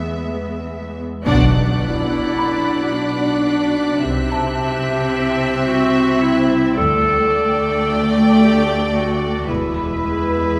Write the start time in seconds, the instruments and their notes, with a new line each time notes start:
Already playing: cello section E2, synth drone E2, viola section G#3 B3, violin section E5
1.26 synth drone B1, double bass section B1, cello section B2, viola section D4, violin section D5 F#5 F#6, impact
1.80 clarinet E4, violin section B6
2.38 grand piano B5
2.93 clarinet D4
4.03 synth drone C2, double bass section C2, cello section C3, viola section C4, clarinet G4, violin section E5
4.32 grand piano A5
5.67 clarinet F#4
6.22 clarinet E4
6.77 double bass section D2, cello section D2, synth drone D2, viola section A3, clarinet A4, violin section D5 G5
8.39 clarinet G4
8.93 clarinet F#4
9.48 double bass section E1, cello section E2, synth drone E2, viola section G#3, clarinet E4, violin section B4 E5